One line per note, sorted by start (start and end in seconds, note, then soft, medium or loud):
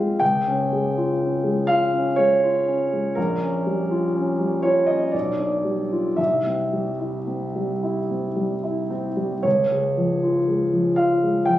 0.00 0.16 F2 soft
0.00 0.23 G#3 soft
0.00 0.24 C4 soft
0.00 0.24 F4 soft
0.00 0.24 D#5 medium
0.00 0.21 F5 medium
0.20 3.13 C#2 soft
0.20 1.69 G5 medium
0.47 0.87 C#4 soft
0.72 1.12 G#3 soft
0.97 1.36 F4 soft
1.21 1.60 C#4 soft
1.44 1.83 G#3 soft
1.67 2.08 F4 soft
1.67 2.17 F5 medium
1.93 2.33 C#4 soft
2.16 2.58 G#3 soft
2.16 3.16 C#5 medium
2.43 2.83 F4 soft
2.68 3.07 C#4 soft
2.93 3.17 G#3 soft
3.15 5.09 A#1 soft
3.15 4.63 A#4 medium
3.41 3.80 C#4 soft
3.67 4.05 G3 soft
3.91 4.30 F4 soft
4.16 4.55 C#4 soft
4.40 4.79 G3 soft
4.62 5.03 F4 soft
4.62 4.88 C#5 medium
4.87 5.14 C#4 soft
4.87 5.13 D#5 medium
5.12 6.15 B1 soft
5.12 6.18 D5 medium
5.39 5.81 D4 soft
5.64 6.07 G3 soft
5.92 6.19 F4 soft
6.17 9.41 C2 soft
6.17 8.90 E5 medium
6.46 6.89 C4 soft
6.73 7.16 G3 soft
7.00 7.43 E4 soft
7.27 7.71 C4 soft
7.56 7.99 G3 soft
7.83 8.26 E4 soft
8.10 8.53 C4 soft
8.36 8.80 G3 soft
8.64 9.08 E4 soft
8.90 9.34 C4 soft
9.17 9.44 G3 soft
9.43 11.59 C#2 soft
9.43 10.97 C#5 medium
9.72 10.13 G#3 soft
9.97 10.38 F3 soft
10.23 10.63 F4 soft
10.48 10.88 G#3 soft
10.73 11.13 F3 soft
10.96 11.38 F4 soft
10.96 11.47 F5 medium
11.23 11.59 G#3 soft
11.46 11.59 F3 soft
11.46 11.59 G5 medium